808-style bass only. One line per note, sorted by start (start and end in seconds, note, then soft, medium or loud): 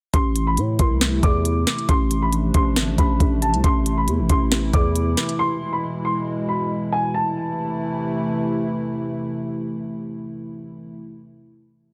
0.14 0.59 A1 loud
0.57 0.78 A2 loud
0.79 1.21 C2 loud
1.23 1.65 E2 loud
1.89 2.52 A1 loud
2.54 2.78 A1 loud
2.76 2.90 G#1 loud
2.88 2.98 A1 loud
2.98 3.19 A1 loud
3.20 3.55 A1 loud
3.54 3.63 C2 loud
3.64 4.09 A1 loud
4.08 4.21 E2 loud
4.19 4.29 A1 loud
4.30 4.72 A1 loud
4.73 5.16 E2 loud